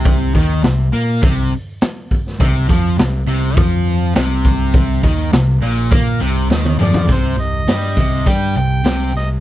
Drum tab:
HH |o-o-o-o-o-o-o-o-|o-o-o-o-o-o-o-o-|o-o-o-o-o-o-----|x-x-x-x-x-x-x-x-|
SD |----o-------o--o|----o-------o---|----o-------o---|----o-------o-o-|
T1 |----------------|----------------|-------------o--|----------------|
T2 |----------------|----------------|--------------o-|----------------|
FT |----------------|----------------|---------------o|----------------|
BD |o-o-----o-----o-|o-o-----o-----o-|o-o-----o-------|o-----o-o-------|